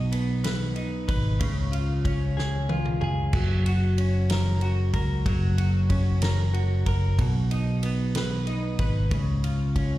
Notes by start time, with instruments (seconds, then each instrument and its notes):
Already playing: fingered electric bass B1, clean electric guitar B2 D#4
0.12 clean electric guitar B3, ride
0.44 clean electric guitar B4, snare, ride
0.76 clean electric guitar D#4, ride
1.08 fingered electric bass G#1, clean electric guitar B4, kick, ride
1.40 fingered electric bass C#2, clean electric guitar C#3, kick, ride
1.72 clean electric guitar F4, ride
2.05 clean electric guitar C#4, kick, ride
2.37 clean electric guitar G#4, snare
2.69 clean electric guitar F4, high tom
2.85 mid tom
3.01 fingered electric bass C#2, clean electric guitar G#4, mid tom
3.33 fingered electric bass F#1, clean electric guitar F#3, kick, crash
3.66 clean electric guitar F#4, ride
3.98 clean electric guitar C#4, ride
4.30 clean electric guitar A#4, snare, ride
4.61 clean electric guitar F#4, ride
4.93 fingered electric bass C#2, clean electric guitar A#4, kick, ride
5.26 fingered electric bass F#1, clean electric guitar F#3, kick, ride
5.58 clean electric guitar F#4, ride
5.89 clean electric guitar C#4, kick, ride
6.22 clean electric guitar A#4, snare, ride
6.54 clean electric guitar F#4, ride
6.86 fingered electric bass F#1, clean electric guitar A#4, kick, ride
7.19 fingered electric bass B1, clean electric guitar B2, kick, ride
7.51 clean electric guitar D#4, ride
7.83 clean electric guitar B3, ride
8.15 clean electric guitar B4, snare, ride
8.47 clean electric guitar D#4, ride
8.79 fingered electric bass G#1, clean electric guitar B4, kick, ride
9.11 fingered electric bass C#2, clean electric guitar C#3, kick, ride
9.44 clean electric guitar F4, ride
9.76 clean electric guitar C#4, kick, ride